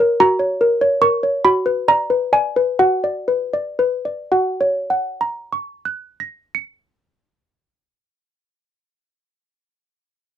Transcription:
handbells
Already playing: F#4 C#5 G#5
0.00 A#4
0.20 F#4 A#5
0.39 C#5
0.61 A#4
0.81 C#5
1.01 A#4 C#6
1.23 C#5
1.45 F#4 B5
1.66 B4
1.88 D5 A#5
2.10 B4
2.33 D5 G#5
2.56 B4
2.79 F#4 F#5
3.04 D5
3.28 B4
3.53 D5
3.79 B4
4.05 D5
4.32 F#4 F#5
4.61 C#5
4.90 F#5
5.21 A#5
5.53 C#6
5.85 F#6
6.20 A#6
6.55 C#7

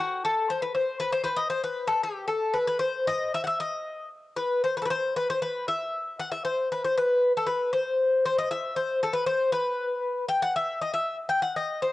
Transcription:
bouzouki
0.00 F#4
0.25 A4
0.50 C5
0.62 B4
0.75 C5
1.00 B4
1.12 C5
1.24 B4 C5
1.37 D#5
1.50 C5
1.64 B4
1.88 A4
2.04 G4
2.28 A4
2.54 B4
2.67 B4
2.79 C5
3.07 D#5
3.34 E5
3.44 E5 F#5
3.60 D#5
4.37 B4
4.64 C5
4.77 B4
4.82 A4 B4
4.90 C5
5.16 B4
5.30 C5
5.42 B4
5.68 E5
6.20 F#5
6.32 E5
6.45 C5
6.72 B4
6.84 C5
6.97 B4
7.37 A4
7.46 B4
7.73 C5
8.25 C5
8.38 D#5
8.51 E5
8.76 C5
9.03 A4
9.13 B4
9.26 C5
9.52 B4
10.28 G5
10.42 F#5
10.56 E5
10.82 D#5
10.94 E5
11.29 G5
11.42 F#5
11.56 D#5
11.82 C5

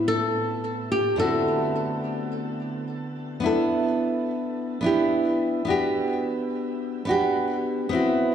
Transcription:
nylon-string guitar
Already playing: A2 B3 C4 E4 F#4
0.08 A4
0.92 G4
1.16 D3 A3 B3 C4 A4
1.20 E4 F#4
3.40 B3 D4 E4
3.46 A4
4.81 B3 D4 E4
4.86 G4
5.65 B3 D4 F#4
5.70 G4
7.05 B3 D4 F#4
7.11 G4
7.89 B3 C4 E4
7.95 F#4

